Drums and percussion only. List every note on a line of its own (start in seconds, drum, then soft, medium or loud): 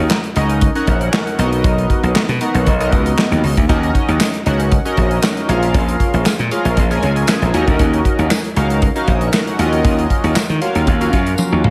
0.10 snare loud
0.10 clap loud
0.24 closed hi-hat soft
0.36 closed hi-hat medium
0.49 closed hi-hat medium
0.61 kick loud
0.61 closed hi-hat loud
0.75 closed hi-hat medium
0.87 kick loud
0.87 closed hi-hat medium
1.01 closed hi-hat medium
1.13 snare loud
1.13 clap loud
1.27 closed hi-hat soft
1.39 closed hi-hat loud
1.53 closed hi-hat medium
1.64 kick loud
1.64 closed hi-hat loud
1.78 closed hi-hat soft
1.90 kick medium
1.90 closed hi-hat medium
2.04 closed hi-hat soft
2.16 snare loud
2.16 clap loud
2.29 closed hi-hat soft
2.41 closed hi-hat medium
2.55 closed hi-hat medium
2.67 kick medium
2.67 closed hi-hat medium
2.81 closed hi-hat medium
2.92 kick loud
2.92 closed hi-hat medium
3.06 closed hi-hat medium
3.18 snare loud
3.18 clap loud
3.32 closed hi-hat soft
3.44 open hi-hat medium
3.57 kick loud
3.57 closed hi-hat medium
3.69 kick loud
3.69 closed hi-hat medium
3.83 closed hi-hat medium
3.95 kick medium
3.95 closed hi-hat medium
4.09 closed hi-hat soft
4.21 snare loud
4.21 clap loud
4.21 tambourine loud
4.34 closed hi-hat medium
4.46 closed hi-hat medium
4.60 closed hi-hat medium
4.72 kick loud
4.72 closed hi-hat medium
4.86 closed hi-hat medium
4.97 kick loud
4.97 closed hi-hat medium
5.11 closed hi-hat soft
5.22 snare loud
5.22 clap loud
5.22 tambourine loud
5.37 closed hi-hat medium
5.49 closed hi-hat medium
5.63 closed hi-hat medium
5.74 kick loud
5.74 closed hi-hat medium
5.89 closed hi-hat medium
6.00 kick medium
6.00 closed hi-hat medium
6.14 closed hi-hat soft
6.26 snare loud
6.26 clap medium
6.26 tambourine loud
6.39 closed hi-hat soft
6.51 closed hi-hat medium
6.65 closed hi-hat medium
6.77 kick medium
6.77 closed hi-hat medium
6.91 closed hi-hat medium
7.03 closed hi-hat medium
7.16 closed hi-hat medium
7.27 snare loud
7.27 clap loud
7.27 tambourine loud
7.42 closed hi-hat medium
7.54 closed hi-hat medium
7.67 kick loud
7.67 closed hi-hat medium
7.79 kick loud
7.79 closed hi-hat medium
7.94 closed hi-hat soft
8.05 kick medium
8.05 closed hi-hat medium
8.19 closed hi-hat soft
8.31 snare loud
8.31 clap loud
8.31 tambourine loud
8.44 closed hi-hat soft
8.56 closed hi-hat medium
8.70 closed hi-hat medium
8.82 kick loud
8.82 closed hi-hat medium
8.96 closed hi-hat medium
9.08 kick loud
9.08 closed hi-hat medium
9.21 closed hi-hat soft
9.33 snare loud
9.33 clap medium
9.33 tambourine medium
9.47 closed hi-hat soft
9.59 closed hi-hat medium
9.73 closed hi-hat medium
9.85 kick loud
9.85 closed hi-hat medium
9.99 closed hi-hat soft
10.10 kick medium
10.10 closed hi-hat medium
10.24 closed hi-hat soft
10.36 snare loud
10.36 clap loud
10.36 tambourine loud
10.50 closed hi-hat soft
10.62 closed hi-hat medium
10.75 closed hi-hat medium
10.87 kick loud
10.87 closed hi-hat medium
11.01 closed hi-hat medium
11.13 kick medium
11.13 closed hi-hat medium
11.27 closed hi-hat soft
11.38 high tom medium
11.38 tambourine medium
11.64 mid tom loud